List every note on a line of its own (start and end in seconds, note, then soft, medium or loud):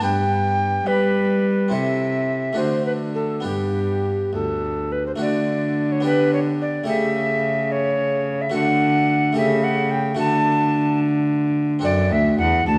0.00 0.84 G2 medium
0.00 0.82 G2 soft
0.00 1.67 B3 soft
0.00 1.67 D4 soft
0.00 1.68 B4 soft
0.00 0.89 G5 medium
0.86 1.74 G3 medium
0.86 1.69 G3 soft
0.86 1.75 B4 medium
1.68 2.57 C3 medium
1.68 2.53 C4 soft
1.68 2.54 E4 soft
1.68 2.55 A4 soft
1.73 2.54 C3 soft
1.73 2.59 E5 medium
2.53 3.40 A3 soft
2.53 3.41 D4 soft
2.53 3.41 F#4 soft
2.57 3.41 D3 soft
2.57 3.47 D3 medium
2.57 2.85 C5 medium
2.86 2.92 B4 medium
3.15 3.44 A4 medium
3.40 5.14 B3 soft
3.40 5.15 D4 soft
3.40 5.16 G4 soft
3.45 4.29 G2 soft
3.45 4.35 G2 soft
3.45 4.31 G4 medium
4.33 5.16 D2 soft
4.33 5.20 D2 soft
4.33 4.93 A4 medium
4.92 5.06 B4 medium
5.06 5.12 C5 medium
5.16 6.00 A3 soft
5.16 6.01 D4 soft
5.16 6.02 F#4 soft
5.21 6.85 D3 soft
5.21 6.85 D3 medium
5.21 5.93 D5 medium
5.92 6.05 C#5 medium
6.00 6.84 B3 soft
6.00 6.85 D4 soft
6.00 6.84 G4 soft
6.05 6.33 B4 medium
6.33 6.40 C#5 medium
6.61 6.88 D5 medium
6.84 8.48 A3 soft
6.84 8.49 G4 soft
6.84 8.50 A4 soft
6.88 8.50 C#3 soft
6.88 8.51 C#3 medium
6.88 7.73 E5 medium
7.72 8.43 C#5 medium
8.41 8.54 E5 medium
8.50 9.31 A3 soft
8.50 9.33 F#4 soft
8.50 9.34 A4 soft
8.54 9.33 D3 medium
8.54 9.36 D3 medium
8.54 9.36 F#5 medium
9.33 10.13 A3 soft
9.33 10.16 G4 soft
9.33 10.16 A4 soft
9.37 10.16 C#3 soft
9.37 10.18 C#3 medium
9.37 9.65 E5 medium
9.64 9.92 F#5 medium
9.91 10.18 G5 medium
10.15 11.78 A3 soft
10.15 11.78 F#4 medium
10.15 11.79 A4 medium
10.19 11.80 D3 medium
10.19 11.81 D3 medium
10.19 10.99 A5 medium
11.79 12.35 C4 medium
11.79 12.78 D4 medium
11.79 12.78 A4 medium
11.83 12.09 F#2 medium
11.83 12.13 F#2 medium
11.83 12.14 D5 loud
12.11 12.37 D2 medium
12.11 12.39 D2 medium
12.11 12.38 E5 loud
12.39 12.64 E2 medium
12.39 12.67 E2 medium
12.39 12.67 F#5 loud
12.67 12.78 D2 medium
12.67 12.78 A5 loud